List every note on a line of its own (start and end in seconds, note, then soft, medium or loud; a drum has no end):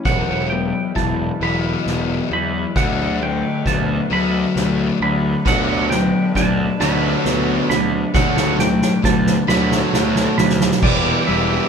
0.05 0.72 E1 medium
0.05 2.31 E2 medium
0.05 0.48 E3 medium
0.05 2.73 E3 medium
0.05 0.48 F#3 medium
0.05 10.79 F#3 medium
0.05 0.48 B3 medium
0.05 2.73 E4 medium
0.05 10.79 B4 medium
0.05 0.49 F#5 medium
0.05 kick medium
0.05 snare soft
0.05 crash medium
0.50 0.91 E3 medium
0.50 0.91 F#3 medium
0.50 1.87 B3 medium
0.50 0.96 G5 medium
0.50 ride medium
0.95 1.29 E1 medium
0.95 1.36 E3 medium
0.95 1.36 F#3 medium
0.95 2.76 E4 medium
0.95 1.42 A5 medium
0.95 kick medium
0.95 snare soft
0.95 ride medium
1.41 1.74 E1 medium
1.41 2.28 E3 medium
1.41 2.30 E3 medium
1.41 2.29 F#3 medium
1.41 2.29 B3 medium
1.41 2.32 B5 medium
1.41 ride medium
1.86 2.19 E1 medium
1.86 3.20 B3 medium
1.86 snare medium
1.86 ride medium
2.31 2.64 E2 medium
2.31 2.71 E3 medium
2.31 2.76 E3 medium
2.31 2.72 F#3 medium
2.31 2.76 B5 medium
2.31 ride medium
2.76 3.42 D2 medium
2.76 5.47 D3 medium
2.76 3.18 D3 medium
2.76 10.79 D3 medium
2.76 3.18 F#3 medium
2.76 3.19 A3 medium
2.76 10.79 D4 medium
2.76 3.18 F#5 medium
2.76 kick medium
2.76 snare medium
2.76 ride medium
3.21 3.62 D3 medium
3.21 3.62 F#3 medium
3.21 4.55 A3 medium
3.21 3.67 G5 medium
3.21 ride medium
3.66 3.99 D2 medium
3.66 4.07 D3 medium
3.66 4.07 F#3 medium
3.66 5.92 B3 medium
3.66 4.08 A5 medium
3.66 kick medium
3.66 snare medium
3.66 ride medium
4.10 4.44 D2 loud
4.10 4.98 D3 medium
4.10 4.98 F#3 medium
4.10 5.01 F#3 medium
4.10 4.98 A3 loud
4.10 4.98 B5 medium
4.10 ride medium
4.56 4.89 D2 medium
4.56 5.46 A3 medium
4.56 snare medium
4.56 ride medium
5.00 5.34 D2 medium
5.00 5.42 D3 medium
5.00 5.47 F#3 medium
5.00 5.42 F#3 medium
5.00 5.47 B5 loud
5.00 ride medium
5.46 6.12 D2 medium
5.46 5.88 D3 loud
5.46 6.79 D3 medium
5.46 5.88 F#3 loud
5.46 5.88 B3 loud
5.46 5.90 F#5 medium
5.46 kick loud
5.46 snare medium
5.46 crash loud
5.90 6.31 D3 medium
5.90 6.31 F#3 medium
5.90 7.25 B3 medium
5.90 6.36 G5 medium
5.90 snare medium
5.90 ride medium
6.35 6.68 D2 medium
6.35 6.76 D3 medium
6.35 6.76 F#3 medium
6.35 9.03 D4 medium
6.35 6.78 A5 medium
6.35 kick medium
6.35 snare medium
6.35 ride medium
6.80 7.13 D2 loud
6.80 7.67 D3 medium
6.80 7.69 D3 medium
6.80 7.67 F#3 loud
6.80 7.68 B3 medium
6.80 7.69 B5 medium
6.80 snare medium
6.80 ride medium
7.25 7.58 D2 medium
7.25 8.59 B3 medium
7.25 snare medium
7.25 ride medium
7.70 8.03 D2 medium
7.70 8.13 D3 medium
7.70 8.10 D3 medium
7.70 8.11 F#3 medium
7.70 8.14 B5 medium
7.70 snare loud
7.70 ride medium
8.14 8.80 D2 medium
8.14 8.56 D3 medium
8.14 10.38 D3 medium
8.14 8.57 F#3 loud
8.14 8.57 A3 loud
8.14 8.60 F#5 medium
8.14 kick loud
8.14 snare medium
8.37 snare loud
8.59 8.99 D3 medium
8.59 8.99 F#3 medium
8.59 9.93 A3 medium
8.59 9.05 G5 medium
8.59 snare loud
8.82 snare loud
9.02 9.37 D2 medium
9.02 9.44 D3 medium
9.02 9.44 F#3 medium
9.02 10.83 B3 medium
9.02 9.48 A5 medium
9.02 kick medium
9.02 snare medium
9.26 snare loud
9.47 9.82 D2 loud
9.47 10.35 D3 medium
9.47 10.35 F#3 medium
9.47 10.38 F#3 medium
9.47 10.36 A3 loud
9.47 10.34 B5 loud
9.47 snare loud
9.71 snare loud
9.94 10.27 D2 medium
9.94 10.83 A3 medium
9.94 snare loud
10.16 snare loud
10.37 10.71 D2 medium
10.37 10.78 D3 medium
10.37 10.78 F#3 medium
10.37 10.83 F#3 medium
10.37 10.80 B5 medium
10.37 snare loud
10.49 snare loud
10.61 snare loud
10.71 snare loud
10.82 11.13 E1 medium
10.82 11.69 E2 medium
10.82 11.27 E3 loud
10.82 11.27 G3 loud
10.82 11.27 B3 loud
10.82 11.29 E4 loud
10.82 11.69 G4 medium
10.82 11.28 G4 loud
10.82 11.28 B4 loud
10.82 11.69 D5 medium
10.82 11.27 D5 medium
10.82 11.69 E5 medium
10.82 11.69 B5 medium
10.82 kick loud
10.82 crash loud
11.27 11.58 E1 medium
11.27 11.69 E3 medium
11.27 11.69 G3 medium
11.27 11.69 B3 loud
11.27 11.69 E4 medium
11.27 11.69 G4 medium
11.27 11.69 B4 medium
11.27 11.69 E5 medium
11.27 ride medium